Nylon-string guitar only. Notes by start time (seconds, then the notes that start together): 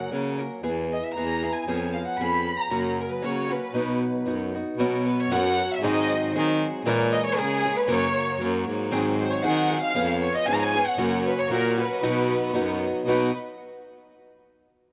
Already playing: F#2 C#3 F#3 A#3 C#4 A#4
0.11 F#3 A#3 C#4 A#4
0.39 F#3 A#3 C#4 A#4
0.63 E3 B3 E4 G#4
1.16 E3 B3 E4 G#4
1.42 B3 E4 G#4
1.68 F3 B3 C#4 G#4
2.19 F3 B3 C#4 G#4
2.70 F#2 C#3 F#3 A#3 C#4 F#4
3.22 F#3 A#3 C#4 F#4
3.50 F#3 A#3 C#4 F#4
3.74 B2 F#3 B3 D#4 F#4
4.26 F#3 B3 D#4 F#4
4.55 B3 D#4 F#4
4.79 B2 F#3 B3 C#4 F#4
5.31 F#3 B3 C#4 F#4
5.83 G#2 D#3 F#3 C4 D#4 G#4
6.34 F#3 C4 D#4 G#4
6.86 A#2 E3 G#3 C#4 G#4 A#4
7.37 G#3 C#4 G#4 A#4
7.65 G#3 C#4 G#4 A#4
7.88 F#2 C#3 F#3 A#3 C#4 A#4
8.39 F#3 A#3 C#4 A#4
8.91 G#2 D#3 F#3 C4 D#4 G#4
9.44 F#3 C4 D#4 G#4
9.72 F#3 C4 D#4 G#4
9.94 F3 B3 C#4 G#4
10.47 F3 B3 C#4 G#4
10.75 B3 C#4 G#4
10.98 F#2 C#3 F#3 A#3 C#4 F#4
11.50 F#3 A#3 C#4 F#4
11.78 F#3 A#3 C#4 F#4
12.03 B2 F#3 B3 D#4 F#4
12.53 F#3 B3 D#4 F#4
13.07 B2 F#3 B3 D#4 F#4